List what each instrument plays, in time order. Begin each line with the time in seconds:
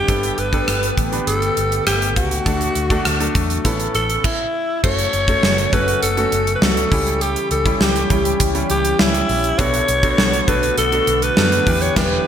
Already playing: analog synth pad D3, grand piano D4 E4 G4 C5, alto saxophone G4
0.08 fingered electric bass G1, grand piano G2 B3 D4 G4 A4, analog synth pad A3 B3 G4, kick, closed hi-hat
0.23 closed hi-hat
0.38 fingered electric bass G1, alto saxophone B4, closed hi-hat
0.52 grand piano B3 D4 G4 A4, kick, closed hi-hat
0.68 fingered electric bass G1, cross-stick, closed hi-hat
0.83 closed hi-hat
0.97 fingered electric bass A1, kick, closed hi-hat
1.12 grand piano B3 D4 G4 B4, closed hi-hat
1.27 fingered electric bass G1, alto saxophone A4, closed hi-hat
1.42 closed hi-hat
1.57 fingered electric bass G1, closed hi-hat
1.72 closed hi-hat
1.87 fingered electric bass G1, alto saxophone G4, cross-stick, closed hi-hat
2.02 closed hi-hat
2.16 fingered electric bass C#2, alto saxophone F#4, kick, closed hi-hat
2.31 closed hi-hat
2.46 fingered electric bass D2, grand piano D3 A3 D4 F#4 A4, analog synth pad F#3 F#4, kick, closed hi-hat
2.61 closed hi-hat
2.75 fingered electric bass D2, closed hi-hat
2.90 grand piano A3 D4 F#4 A4, kick, closed hi-hat
3.05 fingered electric bass D2, cross-stick, closed hi-hat
3.20 grand piano A3 D4 F#4 A4, closed hi-hat
3.35 fingered electric bass E2, kick, closed hi-hat
3.50 closed hi-hat
3.64 fingered electric bass A1, grand piano A2 B3 C#4 E4 A4, kick, closed hi-hat
3.80 closed hi-hat
3.95 fingered electric bass A1, alto saxophone A4, closed hi-hat
4.10 closed hi-hat
4.24 alto saxophone E4, kick, crash
4.83 fingered electric bass F#1, analog synth pad C#3 F#3 A3 F#4, grand piano A3 C#4 F#4 A4, alto saxophone C#5, kick, crash
4.99 closed hi-hat
5.13 fingered electric bass F#1, closed hi-hat
5.28 grand piano A3 C#4 F#4 A4, kick, closed hi-hat
5.43 fingered electric bass F#1, snare
5.58 closed hi-hat
5.72 fingered electric bass F#1, grand piano A3 C#4 F#4 A4, alto saxophone B4, kick, closed hi-hat
5.88 closed hi-hat
6.03 fingered electric bass F#1, alto saxophone A4, closed hi-hat
6.17 grand piano A3 C#4 F#4 A4, closed hi-hat
6.32 fingered electric bass F#1, closed hi-hat
6.47 closed hi-hat
6.55 alto saxophone B4
6.62 fingered electric bass C#2, grand piano A3 C#4 F#4 A4, alto saxophone A4, snare
6.77 closed hi-hat
6.91 fingered electric bass C#2, grand piano C#3 G3 C#4 E4 G4, analog synth pad E3 G3 C#4 G4, kick, open hi-hat
7.07 closed hi-hat
7.21 alto saxophone G4, closed hi-hat
7.36 closed hi-hat
7.51 fingered electric bass C#2, alto saxophone A4, closed hi-hat
7.65 grand piano G3 C#4 E4 G4, kick, closed hi-hat
7.81 fingered electric bass C#2, alto saxophone G4, snare
7.96 closed hi-hat
8.10 fingered electric bass C#2, grand piano G3 C#4 E4 G4, kick, closed hi-hat
8.25 closed hi-hat
8.40 fingered electric bass C#2, kick, closed hi-hat
8.54 grand piano G3 C#4 E4 G4, closed hi-hat
8.70 fingered electric bass C#2, alto saxophone G4, closed hi-hat
8.85 closed hi-hat
8.99 fingered electric bass C#2, grand piano G3 C#4 E4 G4, alto saxophone E4, snare
9.14 closed hi-hat
9.29 fingered electric bass A#1, open hi-hat
9.44 closed hi-hat
9.58 fingered electric bass B1, grand piano B2 B3 D4 F#4 A4, analog synth pad D3 A3 B3 F#4, alto saxophone C#5, kick, closed hi-hat
9.74 closed hi-hat
9.88 fingered electric bass B1, closed hi-hat
10.03 grand piano B3 D4 F#4 A4, kick, closed hi-hat
10.18 fingered electric bass B1, snare
10.33 closed hi-hat
10.47 fingered electric bass B1, grand piano B3 D4 F#4 A4, alto saxophone B4, kick, closed hi-hat
10.63 closed hi-hat
10.78 fingered electric bass B1, alto saxophone A4, closed hi-hat
10.92 grand piano B3 D4 F#4 A4, closed hi-hat
11.07 fingered electric bass B1, closed hi-hat
11.22 alto saxophone B4, closed hi-hat
11.37 fingered electric bass F#2, grand piano B3 D4 F#4 A4, snare
11.52 closed hi-hat
11.66 fingered electric bass E2, grand piano E3 B3 D4 E4 G4, analog synth pad G3 E4, kick, open hi-hat
11.82 alto saxophone C#5, closed hi-hat
11.96 fingered electric bass E1, grand piano E3 B3 D4 E4 G4, alto saxophone B4, kick, snare, crash